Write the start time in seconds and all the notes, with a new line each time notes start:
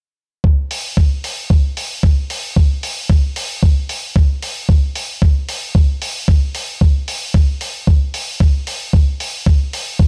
0.44 kick
0.71 open hi-hat
0.97 kick
1.24 open hi-hat
1.50 kick
1.77 open hi-hat
2.03 kick
2.30 open hi-hat
2.56 kick
2.83 open hi-hat
3.10 kick
3.36 open hi-hat
3.63 kick
3.89 open hi-hat
4.16 kick
4.42 open hi-hat
4.69 kick
4.95 open hi-hat
5.22 kick
5.49 open hi-hat
5.75 kick
6.02 open hi-hat
6.28 kick
6.55 open hi-hat
6.81 kick
7.08 open hi-hat
7.34 kick
7.61 open hi-hat
7.87 kick
8.14 open hi-hat
8.40 kick
8.67 open hi-hat
8.93 kick
9.20 open hi-hat
9.46 kick
9.73 open hi-hat
9.99 kick